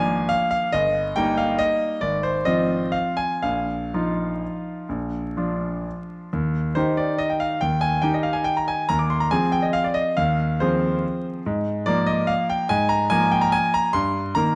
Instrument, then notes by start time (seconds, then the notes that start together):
grand piano
Already playing: G#1 F3 A#3 D4 F5 G#5
0.29 F5
0.51 F5
0.72 G1 D#5
1.16 G3 A#3 D#4 G5
1.37 F5
1.59 D#5
2.01 G#1 D5
2.23 C5
2.45 F3 C4 F4 D#5
2.92 F5
3.17 G#5
3.42 A#1 F5
3.94 F3 D#4 F4
4.89 A#1
5.37 F3 D4 F4
6.33 D#2
6.75 D#3 D#4 G4 C5
6.97 D5
7.18 D#5
7.30 G5
7.40 F5
7.61 D#2 G5
7.81 G#5
8.02 D#3 D#4 G4 G5
8.14 D#5
8.23 F5
8.33 G#5
8.44 G5
8.57 A#5
8.68 G#5
8.89 D#2 A#5
8.99 D6
9.10 C6
9.20 A#5
9.31 F3 C4 G#4 G#5
9.52 G5
9.62 D#5
9.73 F5
9.84 D5
9.94 D#5
10.17 D#2 F5
10.60 F3 C4 G#4 C5
11.46 G#2
11.86 F3 A#3 A#4 D5
12.06 D#5
12.27 F5
12.50 G5
12.69 G#2 G#5
12.89 A#5
13.10 F3 A#3 A#4 G#5
13.31 G5
13.41 A#5
13.52 G#5
13.74 A#5
13.93 G2 C6
14.35 D#3 A#3 A#4 A#5